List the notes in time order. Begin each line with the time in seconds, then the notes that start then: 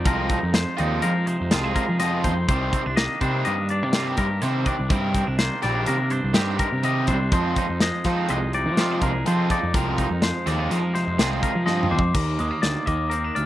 Already playing: G#3
0.05 C2 F2 F3 G#3 C4 F4 A#4, kick, closed hi-hat
0.29 D#4, kick, closed hi-hat
0.43 F2
0.53 F3 G#3 C5, snare, closed hi-hat
0.77 D#2 F3 G#3 C4 D#4 F4 D5, closed hi-hat
1.02 F3 G#3 A#4, closed hi-hat
1.26 C3 D#4 C5, closed hi-hat
1.41 F2
1.51 C2 F3 G#3 C4 F4, snare, closed hi-hat
1.64 G#4
1.76 A#4, kick, closed hi-hat
1.89 F3
2.00 F2 F3 G#3 C4 F4 D#5, snare, closed hi-hat
2.24 F2 D#4 C5, kick, closed hi-hat
2.48 C2 C3 D#3 G3 C4 G4 C5, kick, closed hi-hat
2.73 C4, kick, closed hi-hat
2.86 C2 D4
2.97 D#3 A#3 D#5, snare, closed hi-hat
3.21 C3 D#3 G3 C4 D4 G4 C5, kick, closed hi-hat
3.45 G2 A#3 D#5, closed hi-hat
3.69 G2 D4 D5, closed hi-hat
3.83 C3
3.93 D#3 G3 C4 F4 G4, snare, closed hi-hat
4.06 G4
4.17 G2 A#4, kick, closed hi-hat
4.42 C3 D#3 G3 C4 G4 C5, snare, closed hi-hat
4.66 D4 D5, kick, closed hi-hat
4.80 C2
4.89 G2 C3 D#3 G3 C4 G4 A#4, kick, closed hi-hat
5.14 C4, kick, closed hi-hat
5.27 C2 D4
5.39 D#3 A#3 C5, snare, closed hi-hat
5.62 A#1 D#3 G3 C4 G4 D5, snare, closed hi-hat
5.75 D4
5.86 C3 A#3 A#4, closed hi-hat
6.10 G2 D4 C5, closed hi-hat
6.24 C2
6.34 G2 D#3 G3 C4 G4, snare, closed hi-hat
6.59 A#4, kick, closed hi-hat
6.73 C3
6.83 C3 D#3 G3 C4 G4 D#5, closed hi-hat
7.07 C2 D4 C5, kick, closed hi-hat
7.32 F2 F3 G#3 C4 F4 C5, kick, closed hi-hat
7.56 D#4, kick, closed hi-hat
7.69 F2
7.80 F3 G#3 D#5, snare, closed hi-hat
8.04 F3 G#3 C4 D#4 F4 C5, kick, snare, closed hi-hat
8.29 C2 G#3 D#5, closed hi-hat
8.53 C3 D#4 D5, closed hi-hat
8.66 F3
8.77 F3 G#3 C4 F4, snare, closed hi-hat
8.91 G#4
9.01 C2 A#4, kick, closed hi-hat
9.26 F2 F3 G#3 C4 F4 C5, closed hi-hat
9.50 D#4 D5, kick, closed hi-hat
9.63 F2
9.74 C2 F2 F3 G#3 C4 F4 A#4, kick, closed hi-hat
9.98 D#4, kick, closed hi-hat
10.11 F2
10.22 F3 G#3 C5, snare, closed hi-hat
10.46 D#2 F3 G#3 C4 F4 D5, snare, closed hi-hat
10.59 D#4
10.71 F3 G#3 A#4, snare, closed hi-hat
10.94 C3 D#4 C5, snare, closed hi-hat
11.07 F2
11.19 C2 F3 G#3 C4 F4 G#4, snare, closed hi-hat
11.43 A#4, kick, closed hi-hat
11.55 F3
11.66 G2 F3 G#3 C4 F4 D#5 C6, snare
11.83 mid tom
11.91 F2 C5 D6
11.99 kick
12.14 D#2 A#4, kick, crash
12.39 D#2 G#3 D#6, closed hi-hat
12.51 A#3
12.62 D2 D#3 D5, snare, closed hi-hat
12.86 D#2 A#3 D#5 D6, kick, closed hi-hat
13.10 C4 A#4, closed hi-hat
13.24 D4
13.35 D2 D5 F6, closed hi-hat